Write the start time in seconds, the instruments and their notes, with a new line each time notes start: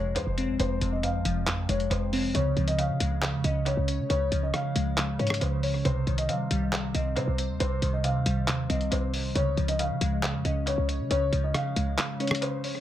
Already playing: 808-style bass F1, synth keys F2 C3 F3 G#3, grand piano C#5
0.16 synth keys F2, 808-style bass F2, grand piano C5, closed hi-hat
0.27 808-style bass F1
0.38 synth keys C4, closed hi-hat
0.49 808-style bass G#1
0.59 808-style bass F1, synth keys F2, grand piano C5, closed hi-hat
0.81 808-style bass F1, synth keys C3, closed hi-hat
0.92 grand piano D#5
1.03 synth keys F2, grand piano F5, closed hi-hat
1.14 808-style bass G#1
1.25 808-style bass F1, synth keys F3, closed hi-hat
1.47 808-style bass G#1, synth keys F2, clap, closed hi-hat
1.69 808-style bass F1, synth keys G#3, grand piano C#5, closed hi-hat
1.80 closed hi-hat
1.91 808-style bass F1, synth keys F2, grand piano C5, closed hi-hat
2.13 synth keys C4, open hi-hat
2.35 808-style bass C#2, synth keys C#3, grand piano C#5, closed hi-hat
2.56 808-style bass C#2, synth keys F3, closed hi-hat
2.67 grand piano D#5, closed hi-hat
2.79 synth keys C#3, grand piano F5, closed hi-hat
2.89 808-style bass C#3
3.00 808-style bass C#2, synth keys G#3, closed hi-hat
3.22 synth keys C#3, clap, closed hi-hat
3.33 808-style bass F2
3.44 808-style bass C#2, synth keys C#4, grand piano D#5, closed hi-hat
3.66 synth keys C#3, grand piano C#5, closed hi-hat
3.77 808-style bass C#2
3.88 synth keys C#5, closed hi-hat
3.99 808-style bass C#3
4.10 808-style bass C#2, synth keys C#3, grand piano C#5, closed hi-hat
4.31 808-style bass C#2, synth keys F3, closed hi-hat
4.43 grand piano D#5
4.54 synth keys C#3, grand piano F5, cross-stick, closed hi-hat
4.75 808-style bass C#2, synth keys G#3, closed hi-hat
4.97 synth keys C#3, clap, closed hi-hat
5.19 808-style bass G#2, synth keys C#4, grand piano C#5, closed hi-hat
5.27 cross-stick, closed hi-hat
5.34 closed hi-hat
5.41 808-style bass C#2, synth keys C#3, grand piano C5, closed hi-hat
5.63 synth keys C#5, open hi-hat
5.85 808-style bass C2, synth keys C3, grand piano C5, closed hi-hat
6.07 808-style bass C2, synth keys D#3, closed hi-hat
6.18 grand piano D#5, closed hi-hat
6.29 synth keys C3, 808-style bass G3, grand piano F5, closed hi-hat
6.51 808-style bass C2, synth keys G3, closed hi-hat
6.73 synth keys C3, clap, closed hi-hat
6.94 808-style bass C2, synth keys C4, grand piano D#5, closed hi-hat
7.16 808-style bass C3, synth keys C3, grand piano C5, closed hi-hat
7.27 808-style bass C2
7.38 synth keys C5, closed hi-hat
7.49 808-style bass D#2
7.60 808-style bass C2, synth keys C3, grand piano C5, closed hi-hat
7.82 808-style bass C2, synth keys D#3, closed hi-hat
7.93 grand piano D#5
8.04 synth keys C3, grand piano F5, closed hi-hat
8.15 808-style bass D#2
8.26 808-style bass C2, synth keys G3, closed hi-hat
8.48 808-style bass D#2, synth keys C3, clap, closed hi-hat
8.70 808-style bass C2, synth keys C4, grand piano D#5, closed hi-hat
8.81 closed hi-hat
8.92 808-style bass C2, synth keys C3, grand piano C5, closed hi-hat
9.13 synth keys C5, open hi-hat
9.35 808-style bass C#2, synth keys C#3, grand piano C#5, closed hi-hat
9.57 808-style bass C#2, synth keys F3, closed hi-hat
9.68 grand piano D#5, closed hi-hat
9.79 synth keys C#3, grand piano F5, closed hi-hat
9.90 808-style bass C#3
10.01 808-style bass C#2, synth keys G#3, closed hi-hat
10.23 synth keys C#3, clap, closed hi-hat
10.34 808-style bass F2
10.45 808-style bass C#2, synth keys C#4, grand piano D#5, closed hi-hat
10.67 synth keys C#3, grand piano C#5, closed hi-hat
10.78 808-style bass C#2
10.89 synth keys C#5, closed hi-hat
11.00 808-style bass C#3
11.11 808-style bass C#2, synth keys C#3, grand piano C#5, closed hi-hat
11.33 808-style bass C#2, synth keys F3, closed hi-hat
11.44 grand piano D#5
11.54 synth keys C#3, grand piano F5, cross-stick, closed hi-hat
11.76 808-style bass C#2, synth keys G#3, closed hi-hat
11.98 synth keys C#3, clap, closed hi-hat
12.20 synth keys C#4, grand piano C#5, closed hi-hat
12.27 cross-stick, closed hi-hat
12.35 closed hi-hat
12.42 synth keys C#3, grand piano C5, closed hi-hat
12.64 synth keys C#5, open hi-hat